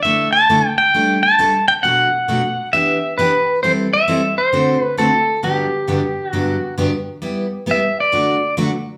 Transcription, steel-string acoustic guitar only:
X:1
M:4/4
L:1/8
Q:"Swing" 1/4=134
K:G
V:1 name="Steel-string acoustic guitar"
[D,A,DEA] z [D,A,DEA] z [G,A,DA] z [G,A,DA] z | [B,,F,A,DF] z [B,,F,A,DF] z [E,B,DG] z [E,B,DG] z | [E,G,CEA] z [E,G,CEA] z [D,A,CFA] z [D,A,CFA] z | [G,,D,F,B,DG] z [G,,D,F,B,DG] z [G,,D,F,B,DG] z [G,,D,F,B,DG] z |
[G,B,EG] z [G,B,EG] z [D,F,A,DF] z [D,F,A,DF] z |]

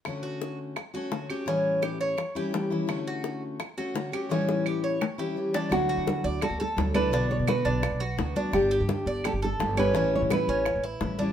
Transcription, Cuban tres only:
X:1
M:4/4
L:1/8
Q:1/4=170
K:D
V:1 name="Cuban tres"
z F2 z2 F2 G | C2 G c2 G2 z | z F2 z2 F2 G | C2 G c2 G2 D |
z F2 d F A2 D | D2 F D2 F2 D- | D G2 d G A2 C | C2 E C2 E2 D |]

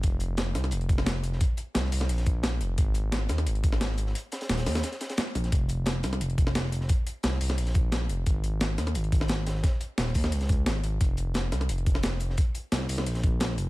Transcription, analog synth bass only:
X:1
M:4/4
L:1/8
Q:1/4=175
K:Fm
V:1 name="Analog synth bass" clef=bass
F,,,3 C,, F,,,4 | z2 C,, C,, B,,,3 F,,, | A,,,3 E,, A,,,4 | z2 E,,, E,, z3 B,,, |
F,,,3 C,, F,,,4 | z2 C,, C,, B,,,3 F,,, | A,,,3 E,, A,,,4 | z2 E,,, E,, D,,2 A,,, A,,, |
F,,,3 C,, F,,,4 | z2 C,, C,, B,,,3 F,,, |]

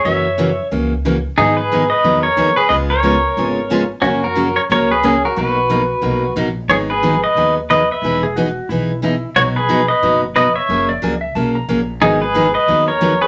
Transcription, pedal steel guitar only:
X:1
M:4/4
L:1/8
Q:"Swing" 1/4=180
K:B
V:1 name="Pedal steel guitar"
[ce]4 z4 | [DG] [GB]2 [Bd]2 [Ac]2 [GB] | [Bd] [Ac]6 z | [CF] [FA]2 [Ac] [Ac] [GB] [CG] [FA] |
[FB]6 z2 | [Gc] [GB]2 [Bd]2 z [Bd] [Be]- | [Be] z6 z | [Fc] [GB]2 [Bd]2 z [Bd] [ce]- |
[ce] z6 z | [DG] [GB]2 [Bd]2 [Ac]2 [GB] |]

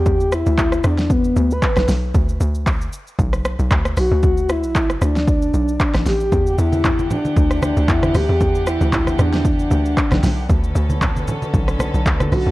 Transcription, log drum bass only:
X:1
M:4/4
L:1/16
Q:"Swing 16ths" 1/4=115
K:Edor
V:1 name="Log drum bass" clef=bass
E,,3 D,,3 E,,4 D,,2 z B,,, B,,,2 | D,,2 D,,4 z2 B,,,3 B,,, D,,2 B,,, D,, | D,,3 B,,,3 D,,4 B,,,2 z A,,, A,,,2 | E,,2 E,,4 z2 D,,3 D,, E,,2 D,, E,, |
E,,3 D,,3 E,,4 D,,2 z B,,, B,,,2 | D,,2 D,,4 z2 B,,,3 B,,, D,,2 B,,, D,, |]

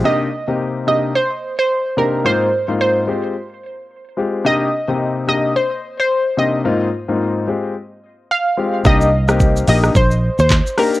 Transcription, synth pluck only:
X:1
M:4/4
L:1/16
Q:"Swing 16ths" 1/4=109
K:Cm
V:1 name="Synth pluck"
e6 e2 c3 c3 B2 | c4 c8 z4 | e6 e2 c3 c3 e2- | e2 z8 z2 f4 |
e6 e2 c3 c3 B2 |]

